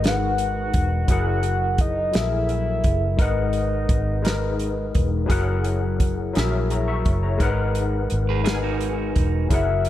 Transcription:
Already playing: G#1 G#3 D#4 A#4 B4 F#5
0.02 G#3 D#4 A#4 F#5, snare, closed hi-hat
0.06 B4 F#5
0.38 closed hi-hat
0.74 E1, kick, closed hi-hat
1.07 F#1 F#3 E4 G#4 A#4 F#5, kick, closed hi-hat
1.12 F#5
1.43 closed hi-hat
1.78 D#5, kick, closed hi-hat
2.11 F#3 E4 G#4, snare, closed hi-hat
2.15 A#1 A4 E5
2.22 A#4
2.49 closed hi-hat
2.84 F#1, kick, closed hi-hat
3.17 G#1 G#3 D#4 A#4 B4 D#5, kick, closed hi-hat
3.22 F#5
3.53 closed hi-hat
3.89 G#1, kick, closed hi-hat
4.22 G#3 D#4 A#4, closed hi-hat
4.26 B4 D#5, snare
4.59 closed hi-hat
4.95 E1, kick, closed hi-hat
5.26 F#3 E4 G#4 A#4, kick, closed hi-hat
5.31 F#1 F#5
5.64 closed hi-hat
6.00 kick, closed hi-hat
6.33 A#1 F#3 E4 G#4 A#4, snare, closed hi-hat
6.39 E5
6.70 C#5 A#5, closed hi-hat
6.88 E5 C#6
7.05 F#1, kick, closed hi-hat
7.23 C#5 A#5
7.38 G#1 G#3 D#4 A#4, kick, closed hi-hat
7.42 B4 F#5
7.75 closed hi-hat
8.10 G#1, closed hi-hat
8.29 G#4 B4
8.43 G#3 D#4 G#4 A#4 B4, closed hi-hat
8.47 F#5, snare
8.55 G#5
8.63 D#4 F#4
8.81 closed hi-hat
9.16 E1, kick, closed hi-hat
9.49 F#1 F#3 E4 G#4 A#4, kick, closed hi-hat
9.54 E5 F#5
9.85 closed hi-hat

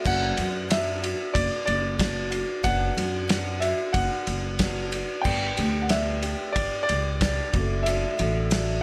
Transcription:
0.05 F#1 F#3 B3 D4 F#4 F#5, kick, crash
0.37 F#2 B3 D4 F#4, ride
0.69 F#3 B3 D4 F#4 E5, snare, ride
1.02 B3 D4 F#4, ride
1.34 F#1 D5, kick, ride
1.66 F#1 D5, ride
1.99 F#3 B3 D4 F#4, kick, snare, ride
2.31 B3 D4 F#4, ride
2.63 F#1 F#3 B3 D4 F#4 F#5, kick, ride
2.95 F#2 B3 D4 F#4, ride
3.28 F#3 B3 D4 F#4, snare, ride
3.60 D4 F#4 E5, ride
3.65 B3
3.93 F#1 F#5, kick, ride
4.27 F#1, ride
4.59 F#3 B3 D4 F#4, kick, snare, ride
4.91 B3 D4 F#4, ride
5.22 G1 G3 G5, kick, crash
5.26 B3 D4 G4
5.57 D2 B3 D4 G4, ride
5.82 F#5
5.89 G3 B3 D4 G4 E5, snare, ride
6.23 B3 D4 G4, ride
6.52 G1 D5, kick, ride
6.83 D5
6.89 C#2, ride
7.21 G3 B3 D4, kick, snare, ride
7.25 G4
7.53 F#1 D4 F#4, kick, ride
7.57 A3
7.83 F#3 E5, ride
7.87 A3 D4 F#4
8.18 A1 A3 D4 F#4, ride
8.50 F#3 A3 D4 F#4, snare, ride

